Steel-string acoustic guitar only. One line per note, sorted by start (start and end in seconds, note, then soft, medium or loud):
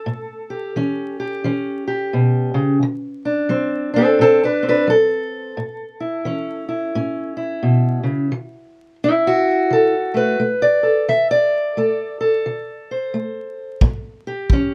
0.00 2.14 A4 medium
0.06 0.69 A2 medium
0.50 1.18 G4 soft
0.76 1.39 E3 medium
0.76 1.44 C#4 soft
1.20 1.86 G4 soft
1.44 2.07 E3 medium
1.44 2.79 C#4 soft
1.88 2.78 G4 soft
2.13 2.54 B2 medium
2.54 2.80 C#3 medium
2.83 3.45 D3 medium
3.25 3.92 D4 soft
3.49 4.13 F#3 medium
3.49 3.95 C4 soft
3.94 4.19 C4 medium
3.94 4.42 D4 soft
3.98 4.20 A4 medium
4.19 4.82 A2 medium
4.19 4.43 C4 medium
4.19 4.43 A4 medium
4.43 4.65 D4 medium
4.43 4.66 B4 medium
4.63 5.54 C4 soft
4.69 4.90 D4 medium
4.69 4.89 B4 medium
4.87 5.51 F#3 medium
4.87 7.64 A4 medium
5.57 6.20 A2 medium
6.00 6.67 E4 soft
6.25 6.89 E3 medium
6.25 6.94 C#4 soft
6.69 7.36 E4 soft
6.95 7.58 A2 medium
6.95 8.29 C#4 soft
7.37 8.29 E4 soft
7.63 8.03 B2 medium
8.03 8.31 C#3 medium
8.32 8.95 D3 medium
9.04 9.94 E4 medium
9.27 10.40 F#4 medium
9.70 10.33 D3 medium
9.70 10.16 A4 medium
10.14 10.39 A3 soft
10.14 10.82 B4 medium
10.40 11.02 A3 medium
10.62 11.07 D5 medium
10.83 11.77 A4 soft
11.08 11.71 D3 medium
11.08 11.30 E5 medium
11.31 12.87 D5 medium
11.77 12.40 A3 medium
11.77 12.20 A4 soft
12.21 14.27 A4 soft
12.46 13.08 D3 medium
12.91 13.80 C5 soft
13.14 13.77 A3 medium
13.82 14.45 A2 medium
14.27 14.74 G4 soft
14.53 14.74 E3 medium
14.53 14.74 C#4 medium